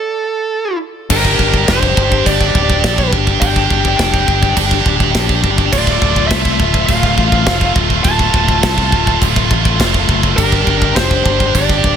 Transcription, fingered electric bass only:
0, 0, Header, 1, 2, 480
1, 0, Start_track
1, 0, Tempo, 580271
1, 912, Time_signature, 4, 2, 24, 8
1, 9897, End_track
2, 0, Start_track
2, 0, Title_t, "Fingered electric bass"
2, 0, Program_c, 0, 33
2, 912, Note_on_c, 0, 31, 100
2, 1140, Note_off_c, 0, 31, 0
2, 1147, Note_on_c, 0, 31, 73
2, 1377, Note_off_c, 0, 31, 0
2, 1393, Note_on_c, 0, 29, 83
2, 1620, Note_off_c, 0, 29, 0
2, 1629, Note_on_c, 0, 31, 96
2, 1858, Note_off_c, 0, 31, 0
2, 1869, Note_on_c, 0, 31, 98
2, 2097, Note_off_c, 0, 31, 0
2, 2108, Note_on_c, 0, 26, 94
2, 2336, Note_off_c, 0, 26, 0
2, 2349, Note_on_c, 0, 34, 97
2, 2577, Note_off_c, 0, 34, 0
2, 2588, Note_on_c, 0, 31, 97
2, 2816, Note_off_c, 0, 31, 0
2, 2821, Note_on_c, 0, 31, 101
2, 3052, Note_off_c, 0, 31, 0
2, 3068, Note_on_c, 0, 31, 85
2, 3295, Note_off_c, 0, 31, 0
2, 3303, Note_on_c, 0, 29, 88
2, 3533, Note_off_c, 0, 29, 0
2, 3541, Note_on_c, 0, 31, 88
2, 3771, Note_off_c, 0, 31, 0
2, 3781, Note_on_c, 0, 31, 107
2, 4011, Note_off_c, 0, 31, 0
2, 4018, Note_on_c, 0, 26, 89
2, 4249, Note_off_c, 0, 26, 0
2, 4260, Note_on_c, 0, 34, 98
2, 4490, Note_off_c, 0, 34, 0
2, 4498, Note_on_c, 0, 31, 91
2, 4729, Note_off_c, 0, 31, 0
2, 4741, Note_on_c, 0, 26, 96
2, 4971, Note_off_c, 0, 26, 0
2, 4979, Note_on_c, 0, 26, 94
2, 5209, Note_off_c, 0, 26, 0
2, 5219, Note_on_c, 0, 36, 82
2, 5450, Note_off_c, 0, 36, 0
2, 5456, Note_on_c, 0, 26, 87
2, 5688, Note_off_c, 0, 26, 0
2, 5697, Note_on_c, 0, 26, 96
2, 5929, Note_off_c, 0, 26, 0
2, 5933, Note_on_c, 0, 33, 97
2, 6167, Note_off_c, 0, 33, 0
2, 6171, Note_on_c, 0, 29, 88
2, 6406, Note_off_c, 0, 29, 0
2, 6416, Note_on_c, 0, 26, 96
2, 6649, Note_off_c, 0, 26, 0
2, 6655, Note_on_c, 0, 26, 102
2, 6888, Note_off_c, 0, 26, 0
2, 6897, Note_on_c, 0, 26, 81
2, 7130, Note_off_c, 0, 26, 0
2, 7140, Note_on_c, 0, 36, 91
2, 7372, Note_off_c, 0, 36, 0
2, 7382, Note_on_c, 0, 26, 81
2, 7613, Note_off_c, 0, 26, 0
2, 7624, Note_on_c, 0, 26, 109
2, 7854, Note_off_c, 0, 26, 0
2, 7862, Note_on_c, 0, 33, 96
2, 8094, Note_off_c, 0, 33, 0
2, 8108, Note_on_c, 0, 29, 97
2, 8337, Note_off_c, 0, 29, 0
2, 8345, Note_on_c, 0, 30, 98
2, 8576, Note_off_c, 0, 30, 0
2, 8585, Note_on_c, 0, 31, 99
2, 8817, Note_off_c, 0, 31, 0
2, 8827, Note_on_c, 0, 31, 88
2, 9058, Note_off_c, 0, 31, 0
2, 9073, Note_on_c, 0, 29, 83
2, 9302, Note_off_c, 0, 29, 0
2, 9309, Note_on_c, 0, 31, 92
2, 9540, Note_off_c, 0, 31, 0
2, 9551, Note_on_c, 0, 31, 99
2, 9782, Note_off_c, 0, 31, 0
2, 9797, Note_on_c, 0, 26, 92
2, 9897, Note_off_c, 0, 26, 0
2, 9897, End_track
0, 0, End_of_file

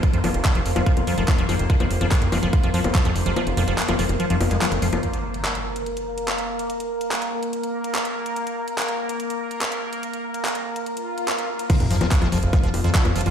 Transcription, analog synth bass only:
0, 0, Header, 1, 2, 480
1, 0, Start_track
1, 0, Tempo, 416667
1, 36, Time_signature, 4, 2, 24, 8
1, 15327, End_track
2, 0, Start_track
2, 0, Title_t, "Analog synth bass"
2, 0, Program_c, 0, 38
2, 155, Note_on_c, 0, 29, 89
2, 242, Note_off_c, 0, 29, 0
2, 275, Note_on_c, 0, 29, 105
2, 361, Note_off_c, 0, 29, 0
2, 395, Note_on_c, 0, 29, 94
2, 482, Note_off_c, 0, 29, 0
2, 635, Note_on_c, 0, 29, 89
2, 722, Note_off_c, 0, 29, 0
2, 755, Note_on_c, 0, 29, 103
2, 842, Note_off_c, 0, 29, 0
2, 875, Note_on_c, 0, 29, 92
2, 961, Note_off_c, 0, 29, 0
2, 1115, Note_on_c, 0, 29, 88
2, 1202, Note_off_c, 0, 29, 0
2, 1235, Note_on_c, 0, 41, 101
2, 1322, Note_off_c, 0, 41, 0
2, 1355, Note_on_c, 0, 29, 93
2, 1441, Note_off_c, 0, 29, 0
2, 1595, Note_on_c, 0, 29, 94
2, 1682, Note_off_c, 0, 29, 0
2, 1715, Note_on_c, 0, 29, 96
2, 1801, Note_off_c, 0, 29, 0
2, 1835, Note_on_c, 0, 29, 92
2, 1922, Note_off_c, 0, 29, 0
2, 2075, Note_on_c, 0, 29, 91
2, 2162, Note_off_c, 0, 29, 0
2, 2195, Note_on_c, 0, 29, 101
2, 2282, Note_off_c, 0, 29, 0
2, 2315, Note_on_c, 0, 29, 93
2, 2402, Note_off_c, 0, 29, 0
2, 2555, Note_on_c, 0, 29, 92
2, 2642, Note_off_c, 0, 29, 0
2, 2675, Note_on_c, 0, 29, 106
2, 2762, Note_off_c, 0, 29, 0
2, 2795, Note_on_c, 0, 29, 96
2, 2881, Note_off_c, 0, 29, 0
2, 3035, Note_on_c, 0, 29, 88
2, 3122, Note_off_c, 0, 29, 0
2, 3155, Note_on_c, 0, 41, 100
2, 3242, Note_off_c, 0, 41, 0
2, 3275, Note_on_c, 0, 29, 96
2, 3362, Note_off_c, 0, 29, 0
2, 3515, Note_on_c, 0, 29, 91
2, 3602, Note_off_c, 0, 29, 0
2, 3635, Note_on_c, 0, 29, 100
2, 3722, Note_off_c, 0, 29, 0
2, 3756, Note_on_c, 0, 29, 92
2, 3842, Note_off_c, 0, 29, 0
2, 3995, Note_on_c, 0, 29, 91
2, 4082, Note_off_c, 0, 29, 0
2, 4116, Note_on_c, 0, 29, 102
2, 4202, Note_off_c, 0, 29, 0
2, 4236, Note_on_c, 0, 29, 91
2, 4322, Note_off_c, 0, 29, 0
2, 4476, Note_on_c, 0, 29, 90
2, 4562, Note_off_c, 0, 29, 0
2, 4596, Note_on_c, 0, 29, 105
2, 4682, Note_off_c, 0, 29, 0
2, 4716, Note_on_c, 0, 29, 93
2, 4802, Note_off_c, 0, 29, 0
2, 4955, Note_on_c, 0, 29, 88
2, 5042, Note_off_c, 0, 29, 0
2, 5075, Note_on_c, 0, 29, 100
2, 5162, Note_off_c, 0, 29, 0
2, 5195, Note_on_c, 0, 29, 91
2, 5282, Note_off_c, 0, 29, 0
2, 5435, Note_on_c, 0, 29, 93
2, 5522, Note_off_c, 0, 29, 0
2, 5555, Note_on_c, 0, 29, 95
2, 5642, Note_off_c, 0, 29, 0
2, 5675, Note_on_c, 0, 29, 91
2, 5762, Note_off_c, 0, 29, 0
2, 13595, Note_on_c, 0, 29, 88
2, 13682, Note_off_c, 0, 29, 0
2, 13715, Note_on_c, 0, 29, 102
2, 13802, Note_off_c, 0, 29, 0
2, 13835, Note_on_c, 0, 29, 91
2, 13922, Note_off_c, 0, 29, 0
2, 14075, Note_on_c, 0, 29, 90
2, 14162, Note_off_c, 0, 29, 0
2, 14196, Note_on_c, 0, 29, 104
2, 14282, Note_off_c, 0, 29, 0
2, 14316, Note_on_c, 0, 29, 96
2, 14402, Note_off_c, 0, 29, 0
2, 14555, Note_on_c, 0, 29, 89
2, 14642, Note_off_c, 0, 29, 0
2, 14675, Note_on_c, 0, 29, 103
2, 14761, Note_off_c, 0, 29, 0
2, 14795, Note_on_c, 0, 29, 94
2, 14882, Note_off_c, 0, 29, 0
2, 15035, Note_on_c, 0, 29, 90
2, 15122, Note_off_c, 0, 29, 0
2, 15155, Note_on_c, 0, 29, 97
2, 15242, Note_off_c, 0, 29, 0
2, 15275, Note_on_c, 0, 29, 90
2, 15327, Note_off_c, 0, 29, 0
2, 15327, End_track
0, 0, End_of_file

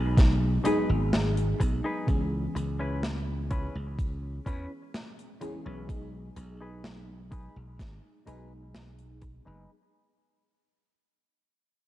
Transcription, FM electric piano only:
0, 0, Header, 1, 2, 480
1, 0, Start_track
1, 0, Tempo, 952381
1, 1048, Time_signature, 4, 2, 24, 8
1, 5984, End_track
2, 0, Start_track
2, 0, Title_t, "FM electric piano"
2, 0, Program_c, 0, 5
2, 0, Control_c, 0, 64, 127
2, 0, Note_on_c, 0, 54, 79
2, 0, Note_on_c, 0, 56, 70
2, 0, Note_on_c, 0, 59, 70
2, 0, Note_on_c, 0, 63, 74
2, 0, Note_on_c, 0, 68, 83
2, 296, Note_off_c, 0, 54, 0
2, 298, Note_off_c, 0, 56, 0
2, 299, Note_off_c, 0, 59, 0
2, 301, Note_off_c, 0, 63, 0
2, 303, Note_off_c, 0, 68, 0
2, 320, Note_on_c, 0, 54, 77
2, 324, Note_on_c, 0, 56, 70
2, 328, Note_on_c, 0, 59, 69
2, 331, Note_on_c, 0, 63, 72
2, 335, Note_on_c, 0, 68, 89
2, 1016, Note_off_c, 0, 54, 0
2, 1018, Note_off_c, 0, 56, 0
2, 1020, Note_off_c, 0, 59, 0
2, 1021, Note_off_c, 0, 63, 0
2, 1023, Note_off_c, 0, 68, 0
2, 1040, Note_on_c, 0, 52, 77
2, 1044, Note_on_c, 0, 56, 73
2, 1047, Note_on_c, 0, 59, 71
2, 1052, Note_on_c, 0, 61, 69
2, 1054, Control_c, 0, 64, 0
2, 1055, Note_on_c, 0, 68, 82
2, 1158, Control_c, 0, 64, 127
2, 2696, Note_off_c, 0, 52, 0
2, 2698, Note_off_c, 0, 56, 0
2, 2699, Note_off_c, 0, 59, 0
2, 2702, Note_off_c, 0, 61, 0
2, 2703, Note_off_c, 0, 68, 0
2, 2724, Note_on_c, 0, 52, 88
2, 2726, Note_on_c, 0, 56, 83
2, 2728, Note_on_c, 0, 59, 86
2, 2729, Note_on_c, 0, 61, 83
2, 2731, Note_on_c, 0, 68, 95
2, 2938, Note_off_c, 0, 52, 0
2, 2939, Note_off_c, 0, 56, 0
2, 2940, Note_off_c, 0, 59, 0
2, 2940, Note_off_c, 0, 61, 0
2, 2941, Note_off_c, 0, 68, 0
2, 2962, Note_on_c, 0, 54, 76
2, 2965, Note_on_c, 0, 56, 72
2, 2968, Note_on_c, 0, 59, 72
2, 2973, Note_on_c, 0, 63, 70
2, 2974, Control_c, 0, 64, 0
2, 2976, Note_on_c, 0, 68, 84
2, 3065, Control_c, 0, 64, 127
2, 4136, Note_off_c, 0, 54, 0
2, 4138, Note_off_c, 0, 56, 0
2, 4140, Note_off_c, 0, 59, 0
2, 4142, Note_off_c, 0, 63, 0
2, 4144, Note_off_c, 0, 68, 0
2, 4160, Note_on_c, 0, 54, 75
2, 4164, Note_on_c, 0, 56, 69
2, 4167, Note_on_c, 0, 59, 69
2, 4172, Note_on_c, 0, 63, 70
2, 4175, Note_on_c, 0, 68, 84
2, 4856, Note_off_c, 0, 54, 0
2, 4858, Note_off_c, 0, 56, 0
2, 4859, Note_off_c, 0, 59, 0
2, 4862, Note_off_c, 0, 63, 0
2, 4863, Note_off_c, 0, 68, 0
2, 4894, Control_c, 0, 64, 0
2, 5984, End_track
0, 0, End_of_file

